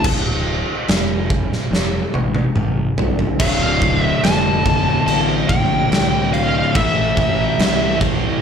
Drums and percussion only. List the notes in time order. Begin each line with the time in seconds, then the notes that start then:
0.04 kick, crash
0.88 snare, crash
1.30 kick
1.53 snare
1.73 snare
2.14 high tom
2.35 high tom
2.56 mid tom
2.98 floor tom
3.19 floor tom
3.40 kick, crash
3.82 kick, crash
4.24 snare, crash
4.66 kick, crash
5.08 crash
5.49 kick, crash
5.92 snare, crash
6.34 crash
6.75 kick, crash
7.17 kick, crash
7.59 snare, crash
8.01 kick, crash